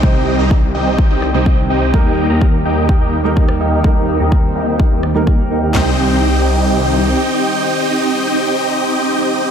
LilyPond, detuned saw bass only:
\new Staff \with { instrumentName = "Detuned saw bass" } { \clef bass \time 4/4 \key c \minor \tempo 4 = 126 c,8. c,8. c,8. c,8 c,8. c,8 | ees,8. ees,8. ees,8. ees,8 ees,8. ees,8 | ees,8. ees,8. ees,8. ees,8 ees,8. ees,8 | c,2. r4 |
r1 | }